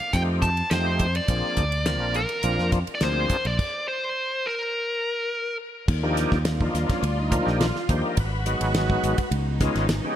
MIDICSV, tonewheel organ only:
0, 0, Header, 1, 2, 480
1, 0, Start_track
1, 0, Tempo, 574163
1, 1079, Time_signature, 4, 2, 24, 8
1, 8493, End_track
2, 0, Start_track
2, 0, Title_t, "Tonewheel organ"
2, 0, Program_c, 0, 16
2, 123, Note_on_c, 0, 67, 74
2, 125, Note_on_c, 0, 60, 68
2, 127, Note_on_c, 0, 53, 70
2, 127, Note_on_c, 0, 57, 66
2, 128, Note_on_c, 0, 63, 66
2, 415, Note_off_c, 0, 67, 0
2, 416, Note_off_c, 0, 60, 0
2, 417, Note_off_c, 0, 53, 0
2, 417, Note_off_c, 0, 57, 0
2, 417, Note_off_c, 0, 63, 0
2, 603, Note_on_c, 0, 53, 57
2, 606, Note_on_c, 0, 57, 57
2, 606, Note_on_c, 0, 60, 61
2, 607, Note_on_c, 0, 67, 67
2, 608, Note_on_c, 0, 63, 61
2, 896, Note_off_c, 0, 53, 0
2, 897, Note_off_c, 0, 57, 0
2, 897, Note_off_c, 0, 60, 0
2, 897, Note_off_c, 0, 67, 0
2, 898, Note_off_c, 0, 63, 0
2, 1083, Note_on_c, 0, 60, 55
2, 1083, Note_on_c, 0, 62, 52
2, 1084, Note_on_c, 0, 68, 65
2, 1085, Note_on_c, 0, 53, 60
2, 1087, Note_on_c, 0, 58, 57
2, 1376, Note_off_c, 0, 60, 0
2, 1376, Note_off_c, 0, 62, 0
2, 1377, Note_off_c, 0, 53, 0
2, 1377, Note_off_c, 0, 68, 0
2, 1378, Note_off_c, 0, 58, 0
2, 1557, Note_on_c, 0, 60, 52
2, 1558, Note_on_c, 0, 53, 65
2, 1558, Note_on_c, 0, 58, 48
2, 1560, Note_on_c, 0, 70, 57
2, 1562, Note_on_c, 0, 62, 53
2, 1854, Note_off_c, 0, 53, 0
2, 1854, Note_off_c, 0, 58, 0
2, 1854, Note_off_c, 0, 60, 0
2, 1855, Note_off_c, 0, 70, 0
2, 1856, Note_off_c, 0, 62, 0
2, 2038, Note_on_c, 0, 53, 72
2, 2038, Note_on_c, 0, 58, 61
2, 2038, Note_on_c, 0, 60, 59
2, 2039, Note_on_c, 0, 65, 73
2, 2040, Note_on_c, 0, 62, 61
2, 2334, Note_off_c, 0, 53, 0
2, 2335, Note_off_c, 0, 58, 0
2, 2335, Note_off_c, 0, 60, 0
2, 2335, Note_off_c, 0, 65, 0
2, 2336, Note_off_c, 0, 62, 0
2, 2519, Note_on_c, 0, 53, 66
2, 2519, Note_on_c, 0, 58, 61
2, 2521, Note_on_c, 0, 60, 60
2, 2521, Note_on_c, 0, 68, 78
2, 2523, Note_on_c, 0, 62, 58
2, 2816, Note_off_c, 0, 53, 0
2, 2816, Note_off_c, 0, 58, 0
2, 2817, Note_off_c, 0, 60, 0
2, 2817, Note_off_c, 0, 62, 0
2, 2817, Note_off_c, 0, 68, 0
2, 5043, Note_on_c, 0, 58, 80
2, 5044, Note_on_c, 0, 63, 84
2, 5046, Note_on_c, 0, 62, 78
2, 5047, Note_on_c, 0, 53, 89
2, 5047, Note_on_c, 0, 67, 97
2, 5336, Note_off_c, 0, 58, 0
2, 5336, Note_off_c, 0, 63, 0
2, 5338, Note_off_c, 0, 53, 0
2, 5338, Note_off_c, 0, 62, 0
2, 5338, Note_off_c, 0, 67, 0
2, 5528, Note_on_c, 0, 53, 61
2, 5530, Note_on_c, 0, 58, 65
2, 5531, Note_on_c, 0, 63, 58
2, 5531, Note_on_c, 0, 65, 81
2, 5532, Note_on_c, 0, 62, 64
2, 5636, Note_off_c, 0, 63, 0
2, 5646, Note_on_c, 0, 63, 80
2, 5766, Note_off_c, 0, 63, 0
2, 5771, Note_on_c, 0, 61, 67
2, 5877, Note_off_c, 0, 62, 0
2, 5881, Note_off_c, 0, 61, 0
2, 5887, Note_on_c, 0, 62, 70
2, 5889, Note_off_c, 0, 53, 0
2, 5890, Note_off_c, 0, 58, 0
2, 5890, Note_off_c, 0, 65, 0
2, 6006, Note_off_c, 0, 62, 0
2, 6014, Note_on_c, 0, 63, 63
2, 6107, Note_on_c, 0, 65, 73
2, 6110, Note_off_c, 0, 63, 0
2, 6116, Note_on_c, 0, 58, 65
2, 6117, Note_on_c, 0, 53, 73
2, 6118, Note_on_c, 0, 62, 71
2, 6120, Note_on_c, 0, 63, 71
2, 6235, Note_on_c, 0, 67, 79
2, 6236, Note_off_c, 0, 65, 0
2, 6353, Note_off_c, 0, 67, 0
2, 6354, Note_on_c, 0, 65, 78
2, 6413, Note_off_c, 0, 53, 0
2, 6413, Note_off_c, 0, 58, 0
2, 6414, Note_off_c, 0, 62, 0
2, 6415, Note_off_c, 0, 63, 0
2, 6590, Note_off_c, 0, 65, 0
2, 6598, Note_on_c, 0, 72, 89
2, 6600, Note_on_c, 0, 53, 75
2, 6600, Note_on_c, 0, 58, 69
2, 6601, Note_on_c, 0, 63, 76
2, 6601, Note_on_c, 0, 67, 89
2, 6602, Note_on_c, 0, 62, 70
2, 6721, Note_off_c, 0, 72, 0
2, 6734, Note_on_c, 0, 70, 78
2, 6840, Note_off_c, 0, 53, 0
2, 6841, Note_off_c, 0, 58, 0
2, 6841, Note_off_c, 0, 62, 0
2, 6841, Note_off_c, 0, 63, 0
2, 6841, Note_off_c, 0, 67, 0
2, 6841, Note_off_c, 0, 70, 0
2, 6854, Note_on_c, 0, 71, 66
2, 7072, Note_on_c, 0, 54, 54
2, 7073, Note_on_c, 0, 56, 66
2, 7073, Note_on_c, 0, 63, 59
2, 7074, Note_on_c, 0, 59, 66
2, 7074, Note_on_c, 0, 66, 71
2, 7663, Note_off_c, 0, 54, 0
2, 7663, Note_off_c, 0, 56, 0
2, 7664, Note_off_c, 0, 59, 0
2, 7664, Note_off_c, 0, 63, 0
2, 7664, Note_off_c, 0, 66, 0
2, 7771, Note_off_c, 0, 71, 0
2, 8031, Note_on_c, 0, 56, 82
2, 8032, Note_on_c, 0, 61, 80
2, 8033, Note_on_c, 0, 65, 95
2, 8036, Note_on_c, 0, 63, 77
2, 8037, Note_on_c, 0, 59, 73
2, 8253, Note_off_c, 0, 56, 0
2, 8254, Note_off_c, 0, 61, 0
2, 8254, Note_off_c, 0, 65, 0
2, 8256, Note_off_c, 0, 59, 0
2, 8256, Note_off_c, 0, 63, 0
2, 8394, Note_on_c, 0, 61, 71
2, 8394, Note_on_c, 0, 67, 79
2, 8395, Note_on_c, 0, 56, 73
2, 8396, Note_on_c, 0, 59, 62
2, 8399, Note_on_c, 0, 63, 63
2, 8493, Note_off_c, 0, 56, 0
2, 8493, Note_off_c, 0, 59, 0
2, 8493, Note_off_c, 0, 61, 0
2, 8493, Note_off_c, 0, 63, 0
2, 8493, Note_off_c, 0, 67, 0
2, 8493, End_track
0, 0, End_of_file